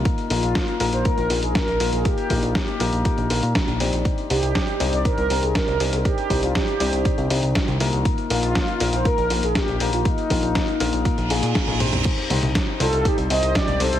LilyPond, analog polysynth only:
\new Staff \with { instrumentName = "Analog polysynth" } { \time 4/4 \key bes \mixolydian \tempo 4 = 120 r8 f'4~ f'16 c''16 bes'8. aes'16 bes'8. aes'16 | g'8. f'16 g'2 r4 | r8 g'4~ g'16 d''16 bes'8. aes'16 bes'8. aes'16 | g'8. f'16 g'2 r4 |
r8 f'4~ f'16 c''16 bes'8. aes'16 g'8. f'16 | ees'2. r4 | \key c \dorian r4. <f' a'>8 <ees' g'>8 <c'' ees''>8 <g' d''>8 <a' c''>8 | }